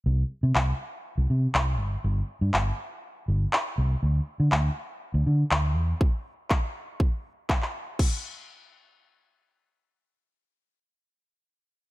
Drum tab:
CC |----------------|----------------|----------------|----------------|
CP |----x-------x---|----x-------x---|----x-------x---|----x-------xx--|
BD |----------------|----------------|----------------|o---o---o---o---|

CC |x---------------|----------------|
CP |----------------|----------------|
BD |o---------------|----------------|